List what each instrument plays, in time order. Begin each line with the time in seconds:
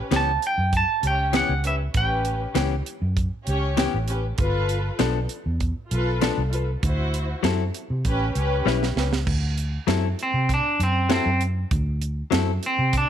Already playing: string section C#4 G4 B4
0.11 fingered electric bass C#2, clean electric guitar E3 B3 C#4 G4, snare, closed hi-hat
0.16 clean electric guitar A5
0.42 closed hi-hat
0.47 clean electric guitar G5
0.58 fingered electric bass F#2
0.73 kick, closed hi-hat
0.77 clean electric guitar A5
1.02 fingered electric bass C#2, string section C#4 G4 C#5, closed hi-hat
1.07 clean electric guitar G5
1.33 clean electric guitar E3 B3 C#4 G4 F#5, snare, closed hi-hat
1.49 fingered electric bass C#2
1.64 string section C#4 G4 B4, clean electric guitar E5, closed hi-hat
1.94 fingered electric bass A1, string section C#4 G4 B4, clean electric guitar G5, kick, closed hi-hat
2.25 closed hi-hat
2.55 fingered electric bass C#2, clean electric guitar E3 B3 C#4 G4, snare, closed hi-hat
2.86 closed hi-hat
3.02 fingered electric bass F#2
3.17 kick, closed hi-hat
3.46 fingered electric bass C#2, string section C#4 G4 C#5, closed hi-hat
3.77 clean electric guitar E3 B3 C#4 G4, snare, closed hi-hat
3.94 fingered electric bass A1
4.08 string section C#4 G4 B4, closed hi-hat
4.37 fingered electric bass G1, string section F4 A4 B4, kick, closed hi-hat
4.69 closed hi-hat
4.99 fingered electric bass B1, clean electric guitar F3 B3 D4 A4, snare, closed hi-hat
5.29 closed hi-hat
5.46 fingered electric bass E2
5.60 kick, closed hi-hat
5.90 fingered electric bass B1, string section F4 A4 B4, closed hi-hat
6.21 clean electric guitar F3 B3 D4 A4, snare, closed hi-hat
6.38 fingered electric bass C2
6.51 string section F4 A4 B4, closed hi-hat
6.82 fingered electric bass D2, string section E4 F#4 C5, kick, closed hi-hat
7.14 closed hi-hat
7.43 fingered electric bass F#2, clean electric guitar F#3 C4 E4 A4, snare, closed hi-hat
7.74 closed hi-hat
7.90 fingered electric bass C3
8.05 fingered electric bass A1, string section C#4 G4 B4, kick, closed hi-hat
8.35 fingered electric bass C#2, string section C#4 G4 B4, closed hi-hat
8.66 fingered electric bass B1, clean electric guitar G3 C#4 E4 B4, snare
8.83 snare
8.96 fingered electric bass C#2, string section C#4 G4 B4, snare
9.13 snare
9.27 fingered electric bass D2, kick, crash
9.58 closed hi-hat
9.87 fingered electric bass F#2, clean electric guitar F#3 C4 E4 A4, snare, closed hi-hat
10.19 clean electric guitar C4, closed hi-hat
10.34 fingered electric bass C3
10.49 kick, closed hi-hat
10.54 clean electric guitar D4
10.80 fingered electric bass F#2, clean electric guitar C4, closed hi-hat
11.09 clean electric guitar F#3 C4 E4 A4, snare, closed hi-hat
11.14 clean electric guitar C4
11.26 fingered electric bass F#2
11.41 closed hi-hat
11.71 fingered electric bass D2, kick, closed hi-hat
12.02 closed hi-hat
12.31 fingered electric bass F#2, clean electric guitar F#3 C4 E4 A4, snare, closed hi-hat
12.63 clean electric guitar C4, closed hi-hat
12.79 fingered electric bass C3
12.93 kick, closed hi-hat
12.98 clean electric guitar D4